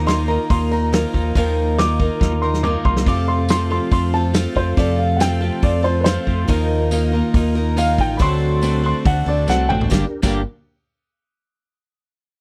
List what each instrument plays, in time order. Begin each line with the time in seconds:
Already playing: fingered electric bass D#2, tonewheel organ D#4 F4 A#4
0.06 clean electric guitar D#3 A#3 D#4 F4, steel-string acoustic guitar F3 A#4, grand piano C6, snare, open hi-hat
0.28 clean electric guitar A#3 D#4 F4, steel-string acoustic guitar A#4, grand piano A#5
0.50 fingered electric bass D#2, clean electric guitar D#3 A#3 D#4 F4, grand piano C6, kick, open hi-hat
0.71 steel-string acoustic guitar A#3 D#4 A#4, grand piano A#5
0.92 clean electric guitar D#3 A#3 D#4 F4, steel-string acoustic guitar F3 A#4, snare, open hi-hat
1.13 fingered electric bass D#2, clean electric guitar A#3 D#4 F4, kick
1.35 fingered electric bass D#2, clean electric guitar D#3 A#3 D#4 F4, steel-string acoustic guitar F3 A#4, kick, open hi-hat
1.78 clean electric guitar D#3 A#3 D#4 F4, steel-string acoustic guitar F3 A#4, grand piano D6, snare, open hi-hat
1.99 clean electric guitar A#3 D#4 F4, steel-string acoustic guitar A#4, kick
2.20 fingered electric bass D#2, clean electric guitar D#3 A#3 D#4 F4, kick, snare
2.32 high tom
2.42 steel-string acoustic guitar A#3 D#4 A#4, grand piano C6
2.54 snare
2.63 clean electric guitar D#3 A#3 D#4 F4, steel-string acoustic guitar F3 A#4, grand piano D6, mid tom
2.84 fingered electric bass C2, clean electric guitar A#3 D#4 F4, grand piano C6, kick
2.97 snare
3.05 clean electric guitar F2 C3 F3 A3 C4 F4, fingered electric bass F2, tonewheel organ C4 F4 A4, steel-string acoustic guitar A4, grand piano D6, kick, open hi-hat
3.28 grand piano C6
3.49 clean electric guitar F2 C3 F3 A3 C4 F4, steel-string acoustic guitar A4, grand piano C6, snare, open hi-hat, tambourine
3.70 clean electric guitar F3 A3 C4 F4, steel-string acoustic guitar A4, grand piano C6
3.91 fingered electric bass F2, clean electric guitar F3 A3 C4 F4, grand piano C6, kick, open hi-hat
4.13 steel-string acoustic guitar C4 F4 A4, grand piano A5
4.33 clean electric guitar F3 A3 C4 F4, snare, open hi-hat, tambourine
4.38 steel-string acoustic guitar A4
4.55 fingered electric bass F2, clean electric guitar F3 A3 C4 F4, grand piano C5, kick
4.77 clean electric guitar F2 C3 F3 A3 C4 F4, fingered electric bass F2, steel-string acoustic guitar A4, grand piano D5, kick, open hi-hat
4.99 grand piano F5
5.16 clean electric guitar F2 C3 F3, grand piano F#5, open hi-hat, tambourine
5.20 clean electric guitar A3 C4 F4, steel-string acoustic guitar A4, grand piano G5, snare
5.40 clean electric guitar F3 A3 C4 F4, steel-string acoustic guitar A4
5.62 fingered electric bass F2, clean electric guitar F3 A3 C4 F4, grand piano D5, kick, open hi-hat
5.83 steel-string acoustic guitar C4 F4 A4, grand piano C5
6.01 grand piano B4 C5
6.05 clean electric guitar F3 A3 C4 F4, steel-string acoustic guitar A4, snare, open hi-hat, tambourine
6.27 fingered electric bass F2, clean electric guitar F3 A3 C4 F4, kick
6.47 fingered electric bass D#2, clean electric guitar D#3 A#3 D#4 F4, steel-string acoustic guitar F3 A#4, tonewheel organ D#4 F4 A#4, kick, open hi-hat
6.91 clean electric guitar D#3 A#3 D#4 F4, steel-string acoustic guitar F3 A#4, open hi-hat, tambourine
7.12 clean electric guitar A#3 D#4 F4, steel-string acoustic guitar A#4
7.34 fingered electric bass D#2, clean electric guitar D#3 A#3 D#4 F4, kick, open hi-hat
7.55 steel-string acoustic guitar A#3 D#4 A#4
7.77 clean electric guitar D#3 A#3 D#4 F4, steel-string acoustic guitar F3 A#4, grand piano F5, open hi-hat, tambourine
7.98 fingered electric bass A1, clean electric guitar A#3 D#4 F4, grand piano G5, kick
8.17 fingered electric bass D2, clean electric guitar D3 A3, steel-string acoustic guitar F#3 D4 A4, tonewheel organ D4 F#4 C5, grand piano B5, kick, open hi-hat
8.22 clean electric guitar C4 F#4, grand piano C6
8.62 clean electric guitar D3 A3 C4 F#4, steel-string acoustic guitar F#3 D4 A4, open hi-hat, tambourine
8.84 clean electric guitar A3 C4 F#4, steel-string acoustic guitar D4 A4, grand piano C6
9.05 fingered electric bass D2, clean electric guitar D3 A3 C4 F#4, grand piano F#5, kick, open hi-hat
9.26 fingered electric bass D2, steel-string acoustic guitar C4 D4 A4, grand piano D5
9.47 fingered electric bass C2, clean electric guitar D3 A3 C4 F#4, steel-string acoustic guitar F#3 D4 A4, grand piano F#5, snare, tambourine
9.69 fingered electric bass A1, clean electric guitar A3 C4 F#4, grand piano G5, mid tom
9.81 floor tom
9.91 fingered electric bass G1, clean electric guitar G2 D3 G3 A#3 D4 G4, tonewheel organ D4 G4 A#4, kick, snare, tambourine
10.23 fingered electric bass G1, clean electric guitar G2 D3 G3 A#3 D4 G4, kick, crash, tambourine